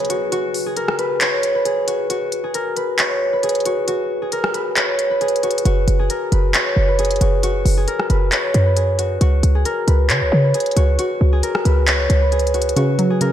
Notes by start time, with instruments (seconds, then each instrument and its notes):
Already playing: harp G#4 B4 C#5
0.05 closed hi-hat
0.10 harp F#4, closed hi-hat
0.32 harp F#4, closed hi-hat
0.54 open hi-hat
0.66 harp G#4
0.77 harp A#4, closed hi-hat
0.88 cross-stick
0.99 harp B4, closed hi-hat
1.21 harp C#5, clap, closed hi-hat
1.43 closed hi-hat
1.55 harp B4
1.65 harp G#4, closed hi-hat
1.88 harp F#4, closed hi-hat
2.10 harp F#4, closed hi-hat
2.32 closed hi-hat
2.44 harp G#4
2.54 harp A#4, closed hi-hat
2.77 harp B4, closed hi-hat
2.99 harp C#5, clap, closed hi-hat
3.33 harp B4
3.43 harp G#4, closed hi-hat
3.49 closed hi-hat
3.55 closed hi-hat
3.60 closed hi-hat
3.65 harp F#4, closed hi-hat
3.88 harp F#4, closed hi-hat
4.22 harp G#4
4.32 harp A#4, closed hi-hat
4.44 cross-stick
4.54 harp B4, closed hi-hat
4.76 harp C#5, clap, closed hi-hat
4.99 closed hi-hat
5.11 harp B4
5.21 harp G#4, closed hi-hat
5.28 closed hi-hat
5.36 closed hi-hat
5.43 harp F#4, closed hi-hat
5.51 closed hi-hat
5.58 closed hi-hat
5.65 808-style bass F#1, harp F#4, closed hi-hat
5.88 808-style bass F#1, closed hi-hat
5.99 harp G#4
6.10 harp A#4, closed hi-hat
6.32 808-style bass F#1, harp B4, closed hi-hat
6.54 harp C#5, clap, closed hi-hat
6.77 808-style bass F#1
6.88 harp B4
6.99 harp G#4, closed hi-hat
7.05 closed hi-hat
7.11 closed hi-hat
7.16 closed hi-hat
7.21 808-style bass F#1, harp F#4, closed hi-hat
7.43 harp F#4, closed hi-hat
7.65 808-style bass F#1, open hi-hat
7.77 harp G#4
7.88 harp A#4, closed hi-hat
8.00 cross-stick
8.10 808-style bass F#1, harp B4, closed hi-hat
8.32 harp C#5, clap, closed hi-hat
8.54 808-style bass F#2, closed hi-hat
8.66 harp B4
8.76 harp G#4, closed hi-hat
8.99 harp F#4, closed hi-hat
9.21 808-style bass C#2, harp F#4, closed hi-hat
9.43 808-style bass C#2, closed hi-hat
9.55 harp G#4
9.65 harp A#4, closed hi-hat
9.88 808-style bass C#2, harp B4, closed hi-hat
10.10 808-style bass C#3, harp C#5, clap, closed hi-hat
10.22 808-style bass C#2
10.32 808-style bass C#3
10.44 harp B4
10.54 harp G#4, closed hi-hat
10.60 closed hi-hat
10.66 closed hi-hat
10.71 closed hi-hat
10.77 808-style bass C#2, harp F#4, closed hi-hat
10.99 harp F#4, closed hi-hat
11.21 808-style bass C#2
11.33 harp G#4
11.43 harp A#4, closed hi-hat
11.55 cross-stick
11.65 808-style bass C#2, harp B4, closed hi-hat
11.87 harp C#5, clap, closed hi-hat
12.10 808-style bass C#2, closed hi-hat
12.22 harp B4
12.32 harp G#4, closed hi-hat
12.39 closed hi-hat
12.47 closed hi-hat
12.54 harp F#4, closed hi-hat
12.62 closed hi-hat
12.69 closed hi-hat
12.76 synth pluck C#3, harp F#4, closed hi-hat
12.99 synth pluck F#3, closed hi-hat
13.10 harp G#4
13.21 synth pluck C#3, harp A#4, closed hi-hat